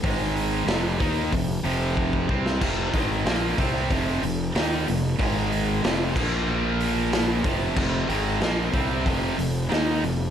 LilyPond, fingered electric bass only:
\new Staff \with { instrumentName = "Fingered electric bass" } { \clef bass \time 4/4 \key f \minor \tempo 4 = 93 aes,,4 f,,8 ees,8 f,,8 f,,4 c,8 | f,,8 aes,,8 bes,,8 c,8 f,,8 f,,8 ees,8 f,,8 | aes,,4 f,,8 bes,,2 f,,8 | f,,8 aes,,8 bes,,8 c,8 f,,8 f,,8 ees,8 f,,8 | }